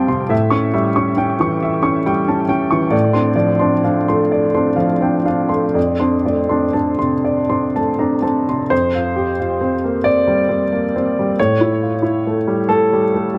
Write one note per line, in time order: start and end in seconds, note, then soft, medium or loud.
0.00 0.08 C3 soft
0.00 0.34 G3 soft
0.00 0.34 C4 soft
0.00 0.34 F5 medium
0.00 0.34 G5 medium
0.00 0.34 A5 soft
0.00 0.08 C6 soft
0.08 0.31 C3 soft
0.08 0.31 C6 soft
0.29 0.52 A2 medium
0.29 0.66 E5 medium
0.50 0.72 C#4 soft
0.50 0.88 C#6 soft
0.74 1.11 G3 soft
0.74 1.10 E5 soft
0.96 1.15 C#4 soft
0.96 1.33 C#6 soft
1.17 1.38 C#4 soft
1.17 1.54 G5 soft
1.40 2.10 E3 soft
1.40 1.77 C#6 soft
1.63 1.98 E5 soft
1.82 2.03 C#4 soft
1.82 2.19 C#6 soft
2.06 2.41 G3 soft
2.06 2.41 G5 medium
2.28 2.47 C#4 soft
2.28 2.50 A5 soft
2.49 2.69 C#4 soft
2.49 2.84 G5 medium
2.71 2.94 E3 soft
2.71 2.93 C#6 soft
2.91 3.14 A2 medium
2.91 3.27 D5 soft
3.13 3.35 C4 soft
3.13 3.35 D4 soft
3.13 3.50 C6 soft
3.36 3.73 F3 soft
3.36 3.73 D5 soft
3.59 3.81 C4 soft
3.59 3.81 D4 soft
3.59 3.97 C6 soft
3.84 4.04 C4 soft
3.84 4.05 D4 soft
3.84 4.21 F5 soft
4.08 4.84 A3 soft
4.08 4.45 C6 soft
4.32 4.69 D5 soft
4.54 4.76 C4 soft
4.54 4.76 D4 soft
4.54 4.93 C6 soft
4.76 5.16 F3 soft
4.76 5.16 F5 soft
5.01 5.23 C4 soft
5.01 5.24 D4 soft
5.01 5.26 G5 soft
5.25 5.48 C4 soft
5.25 5.48 D4 soft
5.25 5.65 F5 soft
5.49 5.75 A3 soft
5.49 5.75 C6 soft
5.74 6.00 F2 soft
5.74 6.15 D5 soft
6.00 6.23 C4 soft
6.00 6.23 D4 soft
6.00 6.40 C6 soft
6.26 6.65 A3 soft
6.26 6.65 D5 soft
6.49 6.72 C4 soft
6.49 6.73 D4 soft
6.49 6.89 C6 soft
6.73 6.97 C4 soft
6.73 6.97 D4 soft
6.73 7.14 A5 soft
6.99 7.79 C3 soft
6.99 7.39 C6 soft
7.24 7.64 D5 soft
7.49 7.72 C4 soft
7.49 7.72 D4 soft
7.49 7.89 C6 soft
7.76 8.15 A3 soft
7.76 8.15 A5 soft
7.99 8.21 C4 soft
7.99 8.21 D4 soft
7.99 8.24 A#5 soft
8.22 8.45 C4 soft
8.22 8.45 D4 soft
8.22 8.61 A5 soft
8.48 8.71 C3 soft
8.48 8.71 C6 soft
8.70 11.33 F2 soft
8.70 10.05 C5 medium
8.95 9.30 F4 soft
9.16 9.38 G4 soft
9.39 9.74 F4 soft
9.61 9.96 C4 soft
9.84 10.06 A#3 soft
10.04 10.40 C4 soft
10.04 11.37 D5 medium
10.28 10.62 G3 soft
10.49 10.84 C4 soft
10.73 10.94 A#3 soft
10.96 11.30 C4 soft
11.19 11.39 G3 soft
11.39 13.38 A2 soft
11.39 12.68 C#5 medium
11.61 11.94 E4 soft
11.82 12.03 F4 soft
12.02 12.37 E4 soft
12.27 12.60 A3 soft
12.47 12.68 G3 soft
12.69 13.03 A3 soft
12.69 13.38 A4 medium
12.93 13.26 G3 soft
13.14 13.38 A3 soft
13.34 13.38 G3 soft